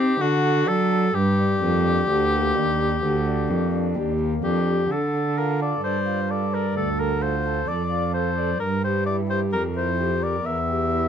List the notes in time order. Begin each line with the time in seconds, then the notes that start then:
Already playing: C4 D#4
0.00 G4
0.20 D3 F#4
0.43 A4
0.66 F#3 D4 A4
0.90 A4
1.14 G2 G4
1.38 D4
1.61 F2 A#3
1.85 D4
2.08 D2 G4
2.31 A#3
2.55 D#2 D4
2.79 G4
3.02 D2
3.26 D4
3.49 F2 A#3
3.73 D4
3.96 D#2 G4
4.20 A#3
4.43 F2 D4 G4
4.68 G4
4.90 D3 A4
5.14 A4
5.38 F4 A#4
5.60 A4 D5
5.82 G2 C5 D5
6.06 F4
6.29 A4 D5
6.52 A#4 D5
6.73 D2 A3 A4
6.98 A4 A#4
7.21 F4 C5
7.45 A4
7.68 F2 D5
7.91 F4
8.13 A4 C5
8.36 D5
8.59 G2 A#4
8.83 G4 C5
9.06 E4 D5
9.28 G4 C5
9.52 F2 A#4
9.75 E4 C5
9.98 G4
10.21 A#4 D5
10.44 E2 E5
10.68 G4
10.91 E4